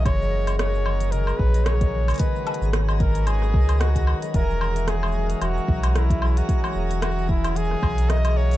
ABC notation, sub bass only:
X:1
M:4/4
L:1/16
Q:"Swing 16ths" 1/4=112
K:Elyd
V:1 name="Sub bass" clef=bass
F,,,8- F,,, z A,,,4- A,,, z | z3 G,,,6- G,,, C,,4 z2 | E,,,6- E,,, z E,,, z B,,,4- B,,, z | z2 E,,,6- E,,, z B,,,4- B,,, z |]